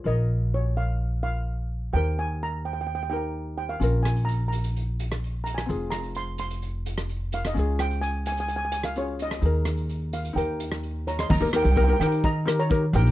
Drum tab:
CC |----------------|----------------|----------------|----------------|
HH |----------------|----------------|x-xxx-xxx-xxx-xx|x-xxx-xxx-xxx-xx|
SD |----------------|----------------|--r--------r---r|--r--------r---r|
BD |----------------|----------------|----------------|----------------|

CC |----------------|----------------|x---------------|
HH |x-xxx-xxx-xxx-xx|x-xxx-xxx-xxx-xx|--xxx-xxx-xxx-xx|
SD |--r--------r---r|--r--------r---r|--r---r---r-----|
BD |----------------|----------------|o---o---o---o---|